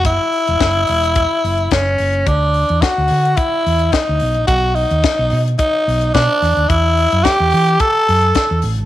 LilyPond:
<<
  \new Staff \with { instrumentName = "Tenor saxophone" } { \time 4/4 \key e \dorian \tempo 4 = 108 e'2. cis'4 | d'4 fis'4 e'4 dis'4 | fis'8 dis'4. dis'4 d'4 | e'4 g'4 a'4. r8 | }
  \new Staff \with { instrumentName = "Fingered electric bass" } { \clef bass \time 4/4 \key e \dorian fis,,16 r8 e,,16 fis,,8 e,,8. r16 fis,,8 fis,,8 fis,,8 | d,8. e,16 r16 d,16 d8 r8 e,8 r16 d,16 b,,16 ais,,16 | b,,8. dis,16 r16 b,,16 b,8 r8 b,,8 b,16 r16 e,16 dis,16 | e,8. fis,16 r16 e,16 e8 r8 fis,8 r16 e,16 a,,16 gis,,16 | }
  \new DrumStaff \with { instrumentName = "Drums" } \drummode { \time 4/4 <hh bd>8 hho16 hh16 <hh bd sn>8 hho16 hh16 <hh bd>8 hho16 hh16 <hh bd sn>8 hho16 hh16 | <hh bd>8 hho16 hh16 <hh bd sn>8 hho16 hh16 <hh bd>8 hho16 hh16 <hh bd sn>8 hho16 hh16 | <hh bd>8 hho16 hh16 <hh bd sn>8 hho16 hh16 <hh bd>8 hho16 hh16 <hh bd sn>8 <hho sn>16 hh16 | <hh bd>8 hho16 hh16 <hh bd sn>8 hho16 hh16 <hh bd>8 hho16 hh16 <hh bd sn>8 hho16 hh16 | }
>>